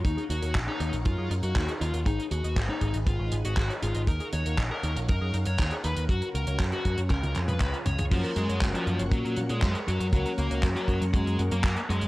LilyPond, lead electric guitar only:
\new Staff \with { instrumentName = "Lead electric guitar" } { \time 4/4 \key ges \major \tempo 4 = 119 ees'16 r16 ges'8 r16 ees'8 r16 f'8 r16 ges'8 r16 f'16 r16 | ees'16 r16 ges'8 r16 ees'8 r16 f'8 r16 ges'8 r16 f'16 r16 | bes'16 r16 des''8 r16 bes'8 r16 bes'8 r16 des''8 r16 ces''16 r16 | ges'16 r16 bes'8 r16 ges'8 r16 bes'8 r16 ces''8 r16 des''16 r16 |
<f f'>16 r16 <aes aes'>8 r16 <f f'>8 r16 <ges ges'>8 r16 <aes aes'>8 r16 <ges ges'>16 r16 | <ges ges'>16 r16 <bes bes'>8 r16 <ges ges'>8 r16 <aes aes'>8 r16 <bes bes'>8 r16 <aes aes'>16 r16 | }